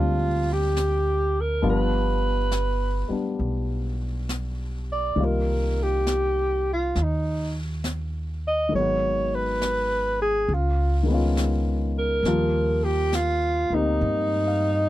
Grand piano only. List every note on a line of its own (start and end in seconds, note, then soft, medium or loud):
0.00 1.61 F3 soft
0.00 1.62 G3 soft
0.00 1.64 A#3 soft
0.00 1.65 C4 soft
0.00 1.62 D4 soft
0.00 1.62 F4 soft
0.00 1.65 D5 soft
1.62 5.17 F3 soft
1.62 3.07 G3 soft
1.62 3.09 B3 soft
1.62 3.11 D4 soft
1.62 5.18 F4 medium
3.09 5.16 G3 soft
3.09 5.18 B3 soft
3.09 5.19 D4 soft
5.16 8.67 D#3 soft
5.16 8.73 G3 soft
5.16 8.73 A#3 soft
5.16 8.74 D#4 soft
5.20 8.75 F4 soft
8.69 10.47 D#3 soft
8.69 10.49 G#3 soft
8.75 10.50 F#3 soft
8.75 10.51 B3 soft
8.80 10.52 F#4 soft
11.03 12.23 D#3 soft
11.03 12.24 G#3 soft
11.08 12.25 B3 soft
11.08 12.27 C#4 soft
11.14 12.26 F4 soft
12.26 14.89 F3 medium
12.26 14.89 G3 soft
12.26 13.71 A#3 soft
12.26 14.89 F4 medium
13.72 14.89 A#3 soft
13.72 14.89 C4 soft
13.72 14.89 D#4 soft
13.72 14.89 G4 soft
14.47 14.74 F5 soft
14.70 14.89 D#5 soft